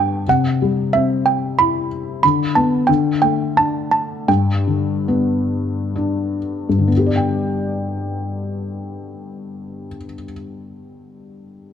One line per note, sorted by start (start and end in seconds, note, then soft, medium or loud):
0.00 0.23 G2 medium
0.00 0.28 D3 soft
0.00 0.23 B3 medium
0.00 0.25 D4 medium
0.00 0.11 G5 medium
0.28 2.19 C3 medium
0.28 0.96 F#5 medium
0.62 1.88 G3 soft
0.93 2.20 C4 medium
0.93 1.23 E5 medium
1.26 1.59 G5 medium
1.59 2.22 E4 soft
1.59 2.04 B5 medium
2.23 2.87 D3 medium
2.23 2.56 B5 medium
2.55 2.88 B3 soft
2.55 2.89 A5 medium
2.87 4.25 D3 medium
2.87 3.02 G5 medium
3.22 4.26 A3 soft
3.22 3.57 G5 medium
3.57 4.26 D4 soft
3.57 3.90 A5 medium
3.91 4.29 A5 medium
4.28 6.68 G2 medium
4.28 5.90 G5 medium
4.67 6.38 D3 soft
5.08 6.86 B3 medium
5.96 6.90 D4 soft
6.69 9.85 G2 soft
6.78 9.95 D3 soft
6.88 10.04 B3 soft
6.97 10.14 G4 soft
7.06 10.23 D5 soft
7.16 10.32 G5 soft